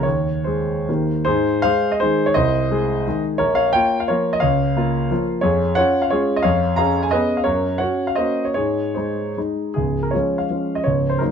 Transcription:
0.03 0.45 D#2 soft
0.03 0.45 C#5 medium
0.44 0.84 G#3 soft
0.44 0.84 G#4 soft
0.44 1.07 C5 soft
0.88 1.25 D#2 soft
0.88 1.23 D#3 soft
0.88 1.23 A#3 soft
0.88 1.23 G4 soft
1.25 1.63 G#2 medium
1.25 1.61 G#4 medium
1.25 1.62 C5 medium
1.62 1.98 G#3 medium
1.62 1.98 G#4 medium
1.62 1.90 C5 medium
1.62 1.91 F5 loud
1.92 2.01 D#5 medium
2.00 2.32 D#3 soft
2.00 2.33 G#3 soft
2.00 2.25 G#4 medium
2.00 2.26 C5 medium
2.26 2.35 C#5 medium
2.34 2.70 C2 medium
2.34 3.19 C5 medium
2.34 3.22 D#5 medium
2.71 3.02 G#3 medium
2.71 3.03 G#4 medium
3.07 3.37 D#3 soft
3.07 3.37 G#3 soft
3.07 3.38 G#4 soft
3.38 3.73 A#1 medium
3.38 3.55 A#4 medium
3.38 3.55 C#5 medium
3.55 3.72 C#5 medium
3.55 3.73 F5 medium
3.73 4.06 A#3 medium
3.73 4.06 F4 medium
3.73 3.99 C#5 medium
3.73 4.00 G5 loud
4.00 4.09 F5 medium
4.08 4.40 F3 soft
4.08 4.40 A#3 soft
4.08 4.40 F4 soft
4.08 4.33 A#4 medium
4.08 4.34 C#5 medium
4.33 4.42 D#5 medium
4.40 4.76 C#2 medium
4.40 5.23 C#5 medium
4.40 5.26 F5 medium
4.77 5.08 A#3 medium
4.77 5.08 F4 medium
5.11 5.40 F3 soft
5.11 5.41 A#3 soft
5.11 5.41 F4 soft
5.41 5.76 F2 medium
5.41 5.74 G#4 medium
5.41 5.75 C#5 medium
5.75 6.09 C#4 medium
5.75 6.09 F4 medium
5.75 6.01 C#5 medium
5.75 6.03 F#5 medium
6.02 6.11 F5 medium
6.10 6.42 G#3 soft
6.10 6.42 C#4 soft
6.10 6.43 F4 soft
6.10 6.35 G#4 medium
6.10 6.36 C#5 medium
6.36 6.45 D#5 medium
6.43 6.77 F2 medium
6.43 6.76 C#5 medium
6.43 6.76 F5 medium
6.76 7.10 C#4 medium
6.76 7.10 G#4 medium
6.76 7.02 F5 medium
6.76 7.03 A#5 medium
7.03 7.12 G#5 medium
7.11 7.44 B3 soft
7.11 7.44 C#4 soft
7.11 7.44 G#4 soft
7.11 7.36 B4 medium
7.11 7.38 D#5 medium
7.37 7.46 F5 medium
7.44 7.80 F#2 medium
7.44 7.78 A#4 medium
7.44 7.78 C#5 medium
7.78 8.14 C#4 soft
7.78 8.14 F#4 medium
7.78 8.06 C#5 medium
7.78 8.07 F#5 medium
8.07 8.17 F5 medium
8.15 8.52 A#3 soft
8.15 8.53 C#4 soft
8.15 8.53 F#4 soft
8.15 8.44 C5 soft
8.15 8.45 D#5 medium
8.45 8.53 C#5 medium
8.54 8.95 G#2 soft
8.54 8.93 G#4 medium
8.54 8.95 C#5 medium
8.94 9.33 G#3 soft
8.94 9.34 D#4 soft
8.94 9.34 G#4 soft
8.94 9.36 C5 soft
9.38 9.72 G#3 soft
9.38 9.73 D#4 soft
9.74 10.13 C#1 soft
9.74 10.13 C#2 soft
9.74 10.03 G#4 medium
10.03 10.13 A#4 medium
10.11 10.47 F3 soft
10.11 10.48 G#3 soft
10.11 10.48 C#4 soft
10.11 10.41 C#5 medium
10.38 10.75 F5 medium
10.50 10.82 F3 soft
10.50 10.82 G#3 soft
10.50 10.82 C#4 soft
10.75 10.85 D#5 medium
10.84 11.20 C#1 soft
10.84 11.20 C#2 soft
10.84 11.11 C#5 medium
11.09 11.20 C5 medium
11.19 11.31 F#3 soft
11.19 11.31 A#3 soft
11.19 11.31 D#4 soft
11.19 11.31 A#4 medium

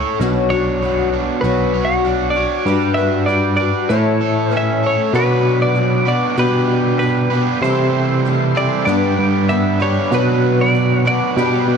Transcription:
0.00 0.21 A3 soft
0.00 0.21 C#4 soft
0.00 0.19 E4 medium
0.00 0.20 A4 medium
0.00 0.21 A4 medium
0.00 0.19 C#5 medium
0.20 1.24 B1 medium
0.20 0.51 B2 medium
0.20 0.52 F#3 medium
0.20 0.52 C#4 loud
0.20 0.52 D4 medium
0.20 0.51 F#4 loud
0.50 0.83 F#4 soft
0.50 1.46 C#5 medium
0.54 0.83 D4 soft
0.82 1.43 F#3 medium
0.82 2.36 B3 medium
0.82 1.44 D4 medium
0.82 1.44 F#4 medium
1.13 2.04 D4 medium
1.41 2.48 B1 medium
1.41 2.06 B2 medium
1.41 2.04 F#3 medium
1.41 2.05 D4 medium
1.41 1.90 B4 medium
1.45 2.06 F#4 medium
1.74 2.35 C#5 medium
1.85 2.30 F#5 medium
2.05 2.36 F#3 medium
2.05 2.36 D4 medium
2.05 2.34 F#4 medium
2.30 2.91 D5 medium
2.36 2.66 D4 soft
2.36 2.66 F#4 soft
2.36 2.67 C#5 medium
2.66 3.71 G2 medium
2.66 2.98 G3 medium
2.66 2.98 D4 medium
2.66 2.97 F#4 medium
2.66 2.96 B4 medium
2.94 3.29 F#4 soft
2.94 3.29 B4 soft
2.94 3.26 E5 medium
2.99 3.28 D4 soft
3.26 3.60 G3 soft
3.26 3.59 D4 medium
3.26 3.59 F#4 medium
3.26 3.55 D5 medium
3.31 3.58 B4 medium
3.57 3.90 D4 soft
3.57 3.90 F#4 soft
3.57 3.90 B4 soft
3.57 3.90 D5 medium
3.89 4.52 A2 medium
3.89 4.95 A2 medium
3.89 4.52 E3 medium
3.89 4.50 A3 medium
3.89 4.51 C#4 medium
3.89 4.51 E4 medium
3.89 4.52 A4 medium
3.89 4.53 C#5 medium
4.21 4.82 A4 medium
4.51 5.14 A3 medium
4.51 5.14 C#4 medium
4.51 5.14 E4 medium
4.51 5.15 A4 medium
4.51 4.79 B4 medium
4.57 4.86 E5 medium
4.83 5.14 A4 medium
4.83 5.15 C#5 medium
5.12 6.19 B2 medium
5.12 5.76 B2 medium
5.12 5.74 F#3 medium
5.12 5.75 B3 medium
5.12 5.75 D4 medium
5.12 5.76 F#4 medium
5.12 7.59 B4 medium
5.12 5.58 B4 medium
5.12 7.59 D5 medium
5.12 6.37 F#5 medium
5.16 6.04 B4 medium
5.62 6.07 D5 medium
5.75 6.07 F#3 soft
5.75 6.07 B3 soft
5.75 6.06 D4 medium
5.75 6.06 F#4 medium
6.05 6.37 B2 medium
6.05 6.37 F#3 medium
6.05 6.37 B3 soft
6.05 6.37 D4 soft
6.05 6.38 F#4 soft
6.05 6.36 B4 medium
6.05 6.39 D5 medium
6.37 7.00 B2 medium
6.37 6.64 B2 medium
6.37 7.00 G3 medium
6.37 7.00 B3 medium
6.37 7.00 D4 medium
6.37 7.01 G4 medium
6.37 6.98 B4 medium
6.37 7.29 B4 medium
6.37 10.07 G5 medium
6.68 7.47 B2 medium
6.99 7.32 G3 medium
6.99 7.32 B3 medium
6.99 7.32 D4 medium
6.99 7.58 B4 medium
7.03 7.32 G4 medium
7.30 7.63 G4 soft
7.30 7.60 B4 medium
7.34 7.64 B3 soft
7.34 7.64 D4 soft
7.61 8.67 C3 medium
7.61 8.25 C3 medium
7.61 8.24 E3 medium
7.61 8.54 G3 medium
7.61 8.25 A3 medium
7.61 8.55 C4 medium
7.61 8.26 E4 medium
7.61 8.86 A4 medium
7.61 8.21 C5 medium
7.61 8.54 C5 medium
7.61 8.86 E5 medium
7.61 8.86 C6 medium
7.65 8.26 G4 medium
8.25 8.56 E3 medium
8.25 8.57 A3 medium
8.25 8.56 E4 medium
8.25 8.55 G4 medium
8.55 8.86 C3 medium
8.55 8.86 E3 medium
8.55 8.84 G3 medium
8.55 8.88 A3 soft
8.55 8.85 C4 medium
8.55 8.88 E4 soft
8.55 8.87 G4 soft
8.55 8.85 C5 medium
8.55 8.84 D5 medium
8.85 9.13 G2 medium
8.85 9.49 G2 medium
8.85 9.50 D3 medium
8.85 9.48 G3 medium
8.85 9.49 B3 medium
8.85 11.77 D4 medium
8.85 9.49 D4 medium
8.85 9.50 G4 medium
8.85 11.77 B4 medium
8.85 9.78 B4 medium
8.85 9.49 D5 medium
9.19 9.97 G2 medium
9.49 9.80 G3 soft
9.49 9.81 B3 medium
9.49 9.80 D4 medium
9.49 9.79 G4 medium
9.49 9.81 E5 medium
9.80 10.12 G3 soft
9.80 10.11 B3 soft
9.80 10.12 D4 soft
9.80 10.12 G4 soft
9.80 10.09 B4 medium
9.80 10.13 C#5 medium
10.11 11.17 B2 medium
10.11 10.74 B2 medium
10.11 10.73 F#3 medium
10.11 10.73 B3 medium
10.11 11.26 D4 medium
10.11 10.74 D4 medium
10.11 11.26 F#4 medium
10.11 10.75 F#4 medium
10.11 11.26 B4 medium
10.11 11.04 B4 loud
10.11 10.61 B4 medium
10.11 11.36 F#5 medium
10.61 11.06 D5 medium
10.74 11.05 F#3 medium
10.74 11.06 B3 medium
10.74 11.05 D4 medium
10.74 11.04 F#4 medium
11.05 11.36 B2 medium
11.05 11.36 F#3 medium
11.05 11.38 B3 soft
11.05 11.37 D4 soft
11.05 11.37 F#4 soft
11.05 11.35 B4 medium
11.05 11.65 D5 medium
11.36 11.63 B2 medium
11.36 11.77 B2 medium
11.36 11.77 G3 medium
11.36 11.77 B3 medium
11.36 11.77 D4 medium
11.36 11.77 G4 medium
11.36 11.77 B4 medium
11.36 11.77 D5 medium
11.68 11.77 B2 medium

